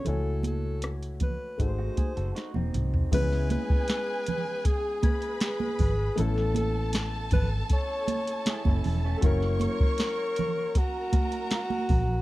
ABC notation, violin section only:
X:1
M:4/4
L:1/8
Q:1/4=79
K:C#m
V:1 name="Violin section"
z8 | [Gg]4- [Gg] [Bb]3 | [Aa]8 | [cc']4 [^A^a]4 |]